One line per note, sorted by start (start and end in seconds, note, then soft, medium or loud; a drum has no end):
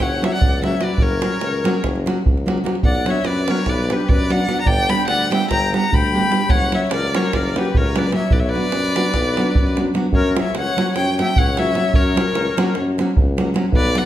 0.00 0.25 F#1 medium
0.00 0.24 C#5 medium
0.00 0.26 F#5 medium
0.00 davul high medium
0.00 davul low medium
0.22 0.33 F#3 medium
0.22 0.34 A#3 medium
0.22 0.34 C#4 medium
0.22 0.34 F#4 medium
0.22 0.33 C#5 medium
0.22 0.33 E5 medium
0.22 davul high medium
0.33 0.62 D5 medium
0.33 0.62 F#5 medium
0.33 davul high soft
0.41 0.75 C#2 medium
0.41 davul low loud
0.62 0.73 F#3 medium
0.62 0.73 A#3 soft
0.62 0.73 C#4 soft
0.62 0.74 F#4 medium
0.62 0.85 E5 medium
0.62 davul high medium
0.67 0.81 C#5 medium
0.72 davul high soft
0.80 0.91 F#3 medium
0.80 0.91 A#3 soft
0.80 0.91 C#4 soft
0.80 0.92 F#4 medium
0.80 0.99 B4 medium
0.80 davul high medium
0.84 1.03 D5 medium
0.98 1.23 F#1 medium
0.98 1.84 A#4 medium
0.98 davul low medium
1.02 1.85 C#5 medium
1.21 1.33 F#3 medium
1.21 1.33 A#3 medium
1.21 1.33 C#4 medium
1.21 1.33 F#4 medium
1.21 davul high medium
1.32 davul high soft
1.40 1.66 C#2 medium
1.40 davul high medium
1.54 davul high soft
1.64 1.75 F#3 medium
1.64 1.76 A#3 medium
1.64 1.76 C#4 medium
1.64 1.76 F#4 loud
1.64 davul high medium
1.83 2.08 F#1 medium
1.83 davul high medium
1.83 davul low medium
1.96 davul high soft
2.06 2.17 F#3 medium
2.06 2.18 A#3 medium
2.06 2.18 C#4 medium
2.06 2.18 F#4 medium
2.06 davul high medium
2.25 2.59 C#2 medium
2.25 davul low loud
2.38 davul high soft
2.46 2.57 F#3 medium
2.46 2.57 A#3 medium
2.46 2.57 C#4 medium
2.46 2.58 F#4 medium
2.46 davul high medium
2.58 davul high soft
2.64 2.75 F#3 medium
2.64 2.75 A#3 medium
2.64 2.75 C#4 medium
2.64 2.75 F#4 medium
2.64 davul high medium
2.75 davul high soft
2.83 3.08 B1 medium
2.83 3.06 D5 medium
2.83 3.12 F#5 medium
2.83 davul low medium
2.95 davul high soft
3.05 3.16 F#3 medium
3.05 3.17 B3 soft
3.05 3.17 D4 medium
3.05 3.17 F#4 medium
3.05 3.25 C#5 medium
3.05 davul high medium
3.10 3.28 E5 medium
3.25 3.50 F#2 medium
3.25 3.49 B4 medium
3.25 3.52 D5 medium
3.25 davul high medium
3.48 3.59 F#3 medium
3.48 3.59 B3 medium
3.48 3.60 D4 medium
3.48 3.60 F#4 medium
3.48 3.67 A#4 medium
3.48 3.71 C#5 medium
3.48 davul high medium
3.58 davul high soft
3.66 3.92 B1 loud
3.66 3.91 B4 medium
3.66 3.94 D5 medium
3.66 davul high medium
3.66 davul low medium
3.90 4.01 F#3 medium
3.90 4.02 B3 medium
3.90 4.02 D4 medium
3.90 4.02 F#4 medium
3.90 4.09 G4 medium
3.90 4.10 B4 medium
3.90 davul high medium
4.00 davul high soft
4.08 4.43 F#2 medium
4.08 4.31 B4 medium
4.08 4.33 D5 medium
4.08 davul low loud
4.30 4.40 F#3 medium
4.30 4.41 B3 medium
4.30 4.41 D4 medium
4.30 4.41 F#4 medium
4.30 4.61 D5 medium
4.30 4.60 F#5 medium
4.30 davul high medium
4.40 davul high soft
4.47 4.58 F#3 medium
4.47 4.58 B3 medium
4.47 4.59 D4 medium
4.47 4.59 F#4 medium
4.47 davul high medium
4.59 4.64 F#5 medium
4.59 4.69 A#5 medium
4.65 4.90 G1 medium
4.65 4.89 D5 medium
4.65 4.91 G5 loud
4.65 davul low medium
4.78 davul high soft
4.88 4.99 G3 medium
4.88 5.00 B3 medium
4.88 5.00 D4 medium
4.88 5.00 G4 medium
4.88 5.08 G5 medium
4.88 5.07 B5 medium
4.88 davul high medium
5.07 5.32 D2 medium
5.07 5.30 D5 medium
5.07 5.30 F#5 loud
5.07 davul high medium
5.30 5.42 G3 medium
5.30 5.42 B3 medium
5.30 5.42 D4 medium
5.30 5.43 G4 medium
5.30 5.50 E5 medium
5.30 5.50 G5 medium
5.30 davul high medium
5.42 davul high soft
5.49 5.75 G1 loud
5.49 5.73 G5 medium
5.49 5.72 A#5 medium
5.49 davul high medium
5.49 davul low medium
5.72 5.84 G3 medium
5.72 5.84 B3 medium
5.72 5.84 D4 medium
5.72 5.85 G4 medium
5.72 5.91 F#5 medium
5.72 5.95 A#5 medium
5.72 davul high medium
5.84 davul high soft
5.91 6.25 D2 medium
5.91 6.50 G5 medium
5.91 6.51 B5 loud
5.91 davul low medium
6.13 6.24 G3 medium
6.13 6.24 B3 medium
6.13 6.24 D4 medium
6.13 6.25 G4 medium
6.23 davul high soft
6.29 6.41 G3 medium
6.29 6.41 B3 medium
6.29 6.42 D4 medium
6.29 6.42 G4 medium
6.29 davul high medium
6.48 6.74 F#1 medium
6.48 6.72 C#5 medium
6.48 6.77 F#5 medium
6.48 davul low loud
6.61 davul high soft
6.71 6.83 F#3 medium
6.71 6.83 A#3 medium
6.71 6.84 C#4 medium
6.71 6.84 F#4 medium
6.71 6.92 C#5 medium
6.71 6.91 E5 medium
6.71 davul high medium
6.91 7.16 C#2 medium
6.91 7.12 A#4 medium
6.91 7.18 D5 medium
6.91 davul high medium
7.13 7.25 F#3 medium
7.13 7.25 A#3 medium
7.13 7.26 C#4 medium
7.13 7.26 F#4 medium
7.13 7.32 A#4 medium
7.13 7.36 C#5 medium
7.13 davul high medium
7.24 davul high soft
7.33 7.58 F#1 medium
7.33 7.57 A#4 medium
7.33 7.60 D5 medium
7.33 davul high medium
7.33 davul low medium
7.55 7.67 F#3 medium
7.55 7.67 A#3 medium
7.55 7.68 C#4 medium
7.55 7.68 F#4 medium
7.55 7.76 G4 medium
7.55 7.79 B4 medium
7.55 davul high medium
7.65 davul high soft
7.75 8.09 C#2 medium
7.75 7.97 A#4 medium
7.75 7.99 C#5 medium
7.75 davul low medium
7.95 8.06 F#3 medium
7.95 8.06 A#3 medium
7.95 8.07 C#4 soft
7.95 8.07 F#4 medium
7.95 8.14 B4 medium
7.95 8.15 D5 medium
7.95 davul high medium
8.05 davul high soft
8.12 8.23 F#3 medium
8.12 8.24 A#3 medium
8.12 8.24 C#4 medium
8.12 8.24 F#4 medium
8.12 8.34 E5 medium
8.12 davul high medium
8.16 8.32 C#5 medium
8.31 8.56 B1 medium
8.31 8.40 B4 medium
8.31 8.41 D5 medium
8.31 davul low loud
8.39 8.49 C#5 medium
8.39 8.51 E5 medium
8.48 9.78 B4 medium
8.48 9.78 D5 loud
8.54 8.65 F#3 medium
8.54 8.66 B3 medium
8.54 8.66 D4 soft
8.54 8.66 F#4 medium
8.64 davul high soft
8.72 8.98 F#2 medium
8.72 davul high medium
8.84 davul high soft
8.96 9.07 F#3 medium
8.96 9.08 B3 medium
8.96 9.08 D4 medium
8.96 9.08 F#4 medium
8.96 davul high medium
9.05 davul high soft
9.14 9.40 B1 medium
9.14 davul high medium
9.14 davul low medium
9.37 9.49 F#3 medium
9.37 9.49 B3 medium
9.37 9.50 D4 medium
9.37 9.50 F#4 medium
9.37 davul high medium
9.55 9.91 F#2 medium
9.55 davul low loud
9.67 davul high soft
9.76 9.88 F#3 medium
9.76 9.88 B3 medium
9.76 9.88 D4 medium
9.76 9.89 F#4 medium
9.76 davul high medium
9.94 10.05 F#3 medium
9.94 10.05 B3 medium
9.94 10.06 D4 medium
9.94 10.06 F#4 medium
9.94 davul high medium
10.12 10.37 F#2 loud
10.12 10.36 A#4 medium
10.12 10.36 C#5 medium
10.12 davul low medium
10.35 10.47 F#3 medium
10.35 10.47 A#3 medium
10.35 10.47 C#4 medium
10.35 10.47 F#4 medium
10.35 davul high medium
10.39 10.55 C#5 medium
10.39 10.55 E5 medium
10.54 10.69 C#2 medium
10.54 10.95 C#5 medium
10.54 10.95 F#5 medium
10.54 davul high medium
10.76 10.88 F#3 medium
10.76 10.89 A#3 medium
10.76 10.89 C#4 medium
10.76 10.89 F#4 medium
10.76 davul high medium
10.87 davul high soft
10.96 11.21 F#2 medium
10.96 11.18 C#5 medium
10.96 11.18 G5 medium
10.96 davul high medium
11.18 11.30 F#3 medium
11.18 11.30 A#3 medium
11.18 11.30 C#4 medium
11.18 11.31 F#4 medium
11.18 11.37 E5 medium
11.18 11.40 G5 loud
11.18 davul high medium
11.36 11.71 C#2 medium
11.36 11.57 C#5 medium
11.36 11.60 F#5 medium
11.36 davul low loud
11.57 11.68 F#3 medium
11.57 11.69 A#3 soft
11.57 11.69 C#4 medium
11.57 11.69 F#4 medium
11.57 11.93 C#5 medium
11.57 11.97 E5 loud
11.57 davul high medium
11.75 11.86 F#3 medium
11.75 11.86 A#3 medium
11.75 11.87 C#4 medium
11.75 11.87 F#4 medium
11.75 davul high medium
11.93 12.18 F#2 loud
11.93 12.76 A#4 medium
11.93 12.77 C#5 medium
11.93 davul low loud
12.15 12.27 F#3 medium
12.15 12.27 A#3 medium
12.15 12.27 C#4 soft
12.15 12.27 F#4 medium
12.15 davul high medium
12.34 12.48 C#2 medium
12.34 davul high medium
12.57 12.68 F#3 medium
12.57 12.68 A#3 medium
12.57 12.69 C#4 medium
12.57 12.69 F#4 medium
12.57 davul high medium
12.67 davul high soft
12.75 13.00 F#2 medium
12.75 davul high medium
12.98 13.09 F#3 medium
12.98 13.10 A#3 medium
12.98 13.10 C#4 medium
12.98 13.10 F#4 medium
12.98 davul high medium
13.17 13.50 C#2 medium
13.17 davul low loud
13.37 13.48 F#3 medium
13.37 13.48 A#3 medium
13.37 13.48 C#4 medium
13.37 13.49 F#4 medium
13.37 davul high medium
13.54 13.65 F#3 medium
13.54 13.65 A#3 medium
13.54 13.65 C#4 medium
13.54 13.66 F#4 medium
13.54 davul high medium
13.72 13.96 B1 loud
13.72 13.94 B4 medium
13.72 davul low loud
13.76 13.99 D5 medium
13.95 14.05 F#3 medium
13.95 14.05 B3 soft
13.95 14.05 D4 medium
13.95 14.05 F#4 medium
13.95 14.05 D5 medium
13.95 14.05 F#5 medium
13.95 davul high medium